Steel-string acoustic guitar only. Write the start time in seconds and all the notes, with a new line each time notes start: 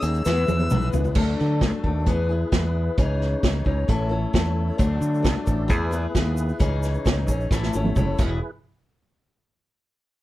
0.03 C#4 D#4 G#4
0.26 E3 B3 E4 G#4
0.49 B3 E4 G#4
0.72 E3 B3 E4 G#4
1.16 D3 F#3 A3 D4 A4
1.62 F#3 A3 D4 A4
1.83 A3 D4 A4
2.07 E3 B3 E4 G#4
2.29 B3 E4 G#4
2.53 E3 B3 E4 G#4
2.98 C#3 E3 C#4 D#4 G#4
3.43 E3 C#4 D#4 G#4
3.65 C#4 D#4 G#4
3.88 A2 E3 A3 C#4 E4 A4
4.09 A3 C#4 E4 A4
4.33 A3 C#4 E4 A4
4.78 D3 F#3 A3 D4 A4
5.22 F#3 A3 D4 A4
5.46 A3 D4 A4
5.68 E3 B3 E4 G#4
5.91 B3 E4 G#4
6.15 B3 E4 G#4
6.59 C#3 E3 C#4 D#4 G#4
7.05 E3 C#4 D#4 G#4
7.28 C#4 D#4 G#4
7.52 A2 E3 A3 C#4 E4 A4
7.74 A3 C#4 E4 A4
7.96 A3 C#4 E4 A4
8.19 E3 B3 E4 G#4